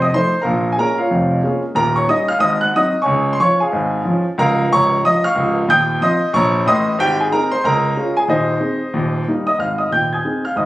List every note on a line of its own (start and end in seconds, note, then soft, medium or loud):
0.02 0.14 D#5 medium
0.02 0.13 D#6 medium
0.13 0.31 F3 soft
0.13 0.32 A3 soft
0.13 0.32 D#4 soft
0.13 0.39 C5 medium
0.13 0.36 C6 loud
0.42 0.73 A#1 medium
0.42 0.73 A#2 medium
0.42 0.72 A#4 medium
0.42 0.72 F5 medium
0.42 0.69 A#5 medium
0.72 0.79 G#5 medium
0.78 0.96 G#3 soft
0.78 0.97 A#3 soft
0.78 0.96 C#4 soft
0.78 0.98 A#4 medium
0.78 0.95 A#5 medium
0.98 1.60 F4 medium
0.98 1.60 C#5 soft
0.98 1.54 F5 medium
1.11 1.39 F1 medium
1.11 1.39 F2 medium
1.44 1.62 G#3 soft
1.44 1.62 A#3 soft
1.44 1.63 C#4 medium
1.75 2.04 D#1 medium
1.75 2.03 D#2 medium
1.75 1.95 A#4 medium
1.75 1.93 A#5 loud
1.96 2.09 C#5 medium
1.96 2.07 C#6 medium
2.08 2.26 G3 medium
2.08 2.27 C#4 soft
2.08 2.27 D#4 soft
2.08 2.28 D#5 medium
2.08 2.26 D#6 medium
2.28 2.41 F5 medium
2.28 2.40 F6 loud
2.39 2.68 G#1 medium
2.39 2.68 G#2 medium
2.39 2.60 D#5 medium
2.39 2.58 D#6 loud
2.61 2.74 F#5 medium
2.61 2.72 F#6 medium
2.75 2.93 F#3 soft
2.75 2.93 C4 soft
2.75 2.94 D#4 medium
2.75 3.00 D#5 medium
2.75 2.97 D#6 loud
3.02 3.32 C#5 medium
3.02 3.32 G#5 medium
3.02 3.29 C#6 medium
3.06 3.34 C#2 medium
3.06 3.34 C#3 medium
3.33 3.40 C6 medium
3.40 3.58 F3 soft
3.40 3.58 C#4 soft
3.40 3.58 F4 medium
3.40 3.59 C#5 medium
3.40 3.56 C#6 loud
3.60 4.22 G#4 medium
3.60 4.22 F5 medium
3.60 4.15 G#5 medium
3.72 4.00 G#1 medium
3.72 4.00 G#2 medium
4.05 4.23 F3 medium
4.05 4.23 C#4 soft
4.05 4.24 F4 medium
4.38 4.64 C#1 medium
4.38 4.64 C#2 medium
4.38 4.69 A#4 medium
4.38 4.69 F5 medium
4.38 4.66 A#5 loud
4.71 4.97 C#1 medium
4.71 4.97 C#2 medium
4.71 5.02 C#5 medium
4.71 5.03 A#5 medium
4.71 4.99 C#6 loud
5.05 5.22 F3 soft
5.05 5.22 C#4 soft
5.05 5.22 F4 medium
5.05 5.23 D#5 loud
5.05 5.21 D#6 loud
5.24 5.66 F5 medium
5.24 5.66 C#6 medium
5.24 5.62 F6 loud
5.36 5.62 C#1 medium
5.36 5.61 C#2 medium
5.68 5.96 D#1 medium
5.68 5.96 D#2 medium
5.68 5.99 G5 medium
5.68 5.99 D#6 medium
5.68 5.97 G6 loud
6.01 6.19 F3 medium
6.01 6.19 C4 medium
6.01 6.19 F4 medium
6.01 6.32 D#5 loud
6.01 6.32 C6 medium
6.01 6.29 D#6 loud
6.33 6.61 A#1 medium
6.33 6.61 A#2 medium
6.33 6.65 C#5 medium
6.33 6.65 A#5 medium
6.33 6.61 C#6 loud
6.66 6.92 A1 medium
6.66 6.92 A2 medium
6.66 6.97 D#5 medium
6.66 6.97 C6 medium
6.66 6.94 D#6 loud
6.99 7.26 G#1 medium
6.99 7.26 G#2 loud
6.99 7.18 G4 medium
6.99 7.16 G5 loud
7.20 7.31 G#4 medium
7.20 7.30 G#5 medium
7.31 7.49 G#3 medium
7.31 7.49 C4 medium
7.31 7.50 D#4 medium
7.31 7.50 A#4 medium
7.31 7.48 A#5 loud
7.52 7.64 C5 medium
7.52 7.62 C6 loud
7.64 7.91 C#2 medium
7.64 7.91 C#3 medium
7.64 8.13 A#4 medium
7.64 8.09 A#5 loud
7.97 8.15 G#3 medium
7.97 8.15 C#4 medium
7.97 8.15 F4 medium
8.17 8.29 G#4 medium
8.17 8.27 G#5 medium
8.28 8.56 D#1 medium
8.28 8.56 D#2 medium
8.28 8.59 D#4 medium
8.28 9.23 C5 medium
8.28 9.12 D#5 medium
8.61 8.79 G#3 soft
8.61 8.79 C4 soft
8.61 8.79 D#4 medium
8.94 9.21 D#1 medium
8.94 9.21 D#2 medium
9.28 9.46 G3 soft
9.28 9.46 A#3 soft
9.28 9.46 D#4 soft
9.47 9.59 D#5 medium
9.47 9.57 D#6 medium
9.58 9.84 G#1 soft
9.58 9.85 G#2 soft
9.58 9.78 F5 medium
9.58 9.76 F6 medium
9.78 9.91 D#5 soft
9.78 9.90 D#6 medium
9.91 10.17 D#1 soft
9.91 10.18 D#2 soft
9.91 10.11 G5 medium
9.91 10.09 G6 medium
10.13 10.43 G#5 soft
10.13 10.43 D#6 soft
10.13 10.40 G#6 medium
10.25 10.43 G#3 soft
10.25 10.43 C4 soft
10.25 10.43 D#4 soft
10.45 10.57 F5 soft
10.45 10.56 F6 medium
10.56 10.66 G#1 medium
10.56 10.66 G#2 medium
10.56 10.66 D#5 soft
10.56 10.66 D#6 medium